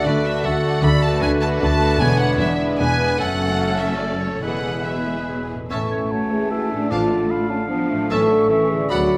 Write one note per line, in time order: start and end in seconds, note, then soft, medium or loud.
0.00 0.83 D3 medium
0.00 0.25 A3 medium
0.00 0.25 D4 medium
0.00 0.24 F#4 soft
0.00 0.24 A4 soft
0.05 0.39 D2 medium
0.05 0.38 D3 medium
0.05 0.44 A3 medium
0.05 2.38 D4 soft
0.05 0.44 F#4 medium
0.05 0.46 B4 medium
0.05 0.25 D5 medium
0.25 0.63 A3 soft
0.25 0.63 D4 soft
0.25 0.62 F#4 soft
0.25 0.63 A4 soft
0.25 0.45 E5 medium
0.44 0.77 D2 medium
0.44 0.77 D3 medium
0.44 0.83 A3 medium
0.44 1.61 A3 soft
0.44 0.83 F#4 medium
0.44 0.83 A4 medium
0.44 0.84 F#5 medium
0.63 0.83 A3 medium
0.63 0.83 D4 medium
0.63 0.83 F#4 medium
0.63 0.83 A4 medium
0.63 1.02 A4 soft
0.83 1.16 D2 medium
0.83 1.16 D3 medium
0.83 2.02 D3 medium
0.83 1.96 A3 medium
0.83 1.60 A3 medium
0.83 3.15 D4 medium
0.83 1.60 F#4 medium
0.83 1.23 A4 medium
0.83 1.03 B5 medium
1.02 1.41 A3 medium
1.02 1.41 D4 medium
1.02 1.40 F#4 medium
1.02 1.40 B4 medium
1.02 1.22 A5 medium
1.21 1.55 D2 medium
1.21 1.54 D3 medium
1.21 2.79 B3 soft
1.21 1.99 B4 medium
1.21 1.30 G#5 medium
1.41 1.79 A3 medium
1.41 1.79 D4 medium
1.41 1.80 F#4 medium
1.41 1.79 A4 medium
1.41 1.79 B4 medium
1.41 1.49 A5 medium
1.60 1.94 D2 medium
1.60 1.93 D3 medium
1.60 2.01 A3 medium
1.60 2.02 A3 soft
1.60 2.02 F#4 medium
1.60 1.99 A5 medium
1.80 2.00 A3 soft
1.80 1.99 D4 soft
1.80 2.00 F#4 medium
1.80 2.02 A4 soft
1.80 1.98 B4 medium
1.99 2.33 E1 medium
1.99 2.33 E2 medium
1.99 3.20 E3 medium
1.99 2.19 G#3 medium
1.99 2.39 B3 medium
1.99 3.17 B3 medium
1.99 2.19 D4 soft
1.99 2.38 D4 medium
1.99 2.18 E4 medium
1.99 2.18 B4 medium
1.99 2.50 C#5 medium
1.99 2.20 G#5 medium
2.19 2.59 G#3 medium
2.19 2.59 D4 medium
2.19 2.58 E4 medium
2.19 2.58 B4 soft
2.19 2.39 F#5 medium
2.39 2.73 E1 medium
2.39 2.73 E2 medium
2.39 2.79 B3 medium
2.39 3.21 D4 soft
2.39 2.79 D4 medium
2.39 2.59 E5 medium
2.59 2.99 G#3 soft
2.59 2.99 D4 soft
2.59 2.97 E4 soft
2.59 2.97 B4 soft
2.59 2.98 B4 soft
2.79 3.13 E1 medium
2.79 3.12 E2 medium
2.79 3.20 B3 medium
2.79 3.21 B3 soft
2.79 3.18 D4 medium
2.79 3.16 B4 medium
2.79 3.16 G#5 medium
2.98 3.19 G#3 soft
2.98 3.19 D4 soft
2.98 3.18 E4 medium
2.98 3.18 B4 medium
2.98 3.21 B4 soft
3.18 4.39 F#1 medium
3.18 4.39 F#2 medium
3.18 4.45 F#2 medium
3.18 4.13 A3 soft
3.18 4.42 A3 medium
3.18 4.39 A3 medium
3.18 4.40 C#4 soft
3.18 4.11 C#4 medium
3.18 4.39 C#4 medium
3.18 4.38 A4 medium
3.18 3.58 A4 medium
3.18 3.80 F#5 medium
3.39 3.78 A4 soft
3.59 4.44 A3 soft
3.59 4.41 A4 medium
3.79 4.20 A4 soft
3.79 4.00 E5 medium
3.99 4.44 C#3 soft
3.99 4.21 D5 medium
4.21 4.44 A4 soft
4.21 4.42 C#5 medium
4.42 5.48 E1 soft
4.42 5.47 E2 soft
4.42 5.72 E2 soft
4.42 4.84 E3 soft
4.42 5.47 G#3 soft
4.42 4.82 G#3 soft
4.42 5.47 B3 soft
4.42 4.82 B3 soft
4.42 4.84 E4 soft
4.42 4.84 G#4 soft
4.42 5.47 B4 soft
4.42 4.84 B4 soft
4.42 4.84 F#5 medium
4.64 5.06 B4 soft
4.85 4.93 F#3 soft
4.85 5.72 G#3 soft
4.85 5.49 G#3 soft
4.85 5.48 B3 soft
4.85 5.48 G#4 soft
4.85 5.48 B4 soft
4.85 5.28 E5 soft
5.06 5.14 G#3 soft
5.28 5.72 B2 soft
5.28 5.49 F#3 soft
5.49 6.72 A2 soft
5.49 5.57 E3 soft
5.49 5.72 B4 soft
5.57 6.86 C#4 soft
5.61 6.88 E4 soft
5.66 7.66 A3 medium
5.66 6.85 A4 soft
5.70 6.05 A1 soft
5.70 6.13 E3 soft
5.70 6.92 C#4 soft
5.70 5.90 C#4 soft
5.70 6.28 A4 medium
5.70 5.89 E5 soft
5.70 5.80 E5 soft
5.70 5.90 A5 soft
5.70 6.13 C#6 soft
5.91 6.00 C#5 soft
6.11 6.33 F#3 soft
6.11 6.50 C#5 soft
6.11 6.89 A5 soft
6.32 6.51 E3 soft
6.32 6.52 G#4 medium
6.51 6.92 E3 soft
6.51 6.71 F#4 medium
6.51 6.92 E5 soft
6.71 7.91 A2 soft
6.71 6.91 D4 medium
6.78 8.06 D4 soft
6.82 8.08 F4 soft
6.87 7.30 D4 soft
6.87 8.05 A4 soft
6.87 7.32 D5 soft
6.87 7.32 A5 soft
6.91 7.24 A1 medium
6.91 7.46 A2 medium
6.91 7.12 F3 soft
6.91 7.09 D4 soft
6.91 7.49 F4 medium
6.91 7.09 F5 soft
6.91 7.09 A5 soft
7.11 7.69 D3 soft
7.30 7.68 D4 soft
7.30 8.13 F5 soft
7.30 7.52 B5 medium
7.50 7.59 C#4 medium
7.50 7.69 A5 soft
7.69 8.10 F3 medium
7.69 8.12 F3 soft
7.69 7.91 B3 medium
7.69 8.09 D4 medium
7.69 8.10 A5 medium
7.89 8.83 A2 soft
7.89 8.51 A3 medium
7.97 8.85 C#4 soft
8.02 8.88 E4 soft
8.06 8.44 A1 medium
8.06 8.90 A4 soft
8.06 8.29 A5 medium
8.10 8.30 E3 medium
8.10 8.50 F#3 medium
8.10 8.29 C#4 medium
8.10 8.69 A4 medium
8.10 8.29 E5 medium
8.10 8.49 E5 soft
8.10 8.50 C#6 soft
8.31 8.52 D3 medium
8.49 8.90 E3 medium
8.49 8.92 E3 medium
8.49 8.91 C#4 soft
8.49 8.92 E5 medium
8.49 8.91 C#6 medium
8.70 9.18 D3 soft
8.70 8.90 G#4 medium
8.77 9.18 B3 soft
8.81 9.18 F#4 soft
8.86 9.18 D4 soft
8.86 9.18 B4 soft
8.86 9.09 B5 medium
8.86 9.18 B5 soft
8.90 9.18 D2 medium
8.90 9.18 F#3 medium
8.90 9.18 F#3 soft
8.90 9.09 B3 soft
8.90 9.18 F#4 medium
8.90 9.18 D5 soft
8.90 9.09 F#5 medium
9.13 9.18 E3 soft